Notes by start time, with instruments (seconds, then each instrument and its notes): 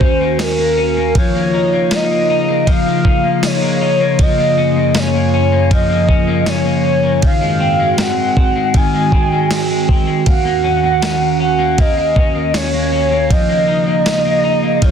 Already playing: ambient pad D#2 D#3 C#4 F#4, clean electric guitar A#3 F#4, soft synth lead C5
0.01 clean electric guitar C#4, kick
0.21 clean electric guitar A#3
0.39 soft synth lead A#4, snare, ride, tambourine
0.58 clean electric guitar A#3
0.77 clean electric guitar C#4
0.97 clean electric guitar A#3
1.15 ambient pad C#3 A#3 D#4 F4, clean electric guitar F3, soft synth lead C#5, kick, ride
1.35 clean electric guitar A#3
1.54 clean electric guitar D#4
1.73 clean electric guitar A#3
1.91 clean electric guitar D#4, snare, ride, tambourine
1.95 soft synth lead D#5
2.11 clean electric guitar A#3
2.30 clean electric guitar D#4
2.48 clean electric guitar A#3
2.67 clean electric guitar F3, kick, ride
2.71 soft synth lead F5
2.86 clean electric guitar A#3
3.05 clean electric guitar D#4, kick
3.24 clean electric guitar A#3
3.43 clean electric guitar D#4, soft synth lead C#5, snare, ride, tambourine
3.62 clean electric guitar A#3
3.81 clean electric guitar D#4
4.00 clean electric guitar A#3
4.19 ambient pad F#2, clean electric guitar F3, soft synth lead D#5, kick, ride
4.38 clean electric guitar A#3
4.58 clean electric guitar C#4
4.76 clean electric guitar A#3
4.95 clean electric guitar C#4, snare, ride, tambourine
4.99 soft synth lead C#5
5.14 clean electric guitar A#3
5.34 clean electric guitar C#4
5.52 clean electric guitar A#3
5.71 clean electric guitar F3, soft synth lead D#5, kick, ride
5.89 clean electric guitar A#3
6.09 clean electric guitar C#4, kick
6.27 clean electric guitar A#3
6.46 clean electric guitar C#4, soft synth lead C#5, snare, ride, tambourine
6.65 clean electric guitar A#3
6.84 clean electric guitar C#4
7.03 clean electric guitar A#3
7.22 ambient pad G#2 D#3 C4 F#4, clean electric guitar D#3, soft synth lead F5, kick, ride
7.41 clean electric guitar G#3
7.60 clean electric guitar C4
7.79 clean electric guitar G#3
7.98 clean electric guitar C4, soft synth lead F#5, snare, ride, tambourine
8.18 clean electric guitar G#3
8.37 clean electric guitar C4, kick
8.56 clean electric guitar G#3
8.74 clean electric guitar D#3, soft synth lead G#5, kick, ride
8.94 clean electric guitar G#3
9.12 clean electric guitar C4, kick
9.32 clean electric guitar G#3
9.51 clean electric guitar C4, snare, ride, tambourine
9.70 clean electric guitar G#3
9.89 clean electric guitar C4, kick
10.07 clean electric guitar G#3
10.26 ambient pad D#2 C#4, clean electric guitar A#3, soft synth lead F#5, kick, ride
10.45 clean electric guitar A#3
10.64 clean electric guitar C#4
10.84 clean electric guitar A#3
11.02 clean electric guitar C#4, snare, ride, tambourine
11.21 clean electric guitar A#3
11.40 clean electric guitar C#4, soft synth lead F#5
11.59 clean electric guitar A#3
11.78 clean electric guitar A#3, soft synth lead D#5, kick, ride
11.97 clean electric guitar A#3
12.16 clean electric guitar C#4, kick
12.35 clean electric guitar A#3
12.54 clean electric guitar C#4, soft synth lead C#5, snare, ride, tambourine
12.74 clean electric guitar A#3
12.92 clean electric guitar C#4
13.11 clean electric guitar A#3
13.30 ambient pad C#3 A#3 D#4 F4, clean electric guitar F3, soft synth lead D#5, kick, ride
13.49 clean electric guitar A#3
13.68 clean electric guitar D#4
13.87 clean electric guitar A#3
14.06 clean electric guitar D#4, snare, ride, tambourine
14.25 clean electric guitar A#3
14.44 clean electric guitar D#4
14.63 clean electric guitar A#3
14.82 clean electric guitar F3, soft synth lead C#5, kick, ride